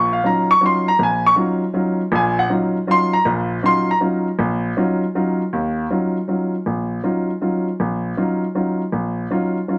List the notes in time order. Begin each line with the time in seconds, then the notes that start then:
Already playing: A#1 A#2 C#6
0.13 F5
0.23 F#3 C#4 D#4 F4 A#5
0.51 C#6
0.61 F#3 C#4 D#4 F4
0.66 C6
0.88 A#5
0.99 A#1
1.03 G#5
1.26 C#6
1.36 F#3 C#4 D#4 F4
1.73 F#3 C#4 D#4 F4
2.12 A#1 A#2 G#5
2.39 F#5
2.49 F#3 C#4 D#4 F4
2.87 F#3 C#4 D#4 F4
2.91 C6
3.13 A#5
3.25 A#1 A#2
3.63 F#3 C#4 D#4 F4 C6
3.91 A#5
4.01 F#3 C#4 D#4 F4
4.39 A#1
4.77 F#3 C#4 D#4 F4
5.15 F#3 C#4 D#4 F4
5.53 D#2
5.90 F#3 C#4 D#4 F4
6.28 F#3 C#4 D#4 F4
6.66 A#1
7.03 F#3 C#4 D#4 F4
7.41 F#3 C#4 D#4 F4
7.80 A#1
8.17 F#3 C#4 D#4 F4
8.55 F#3 C#4 D#4 F4
8.92 A#1
9.31 F#3 C#4 D#4 F4
9.68 F#3 C#4 D#4 F4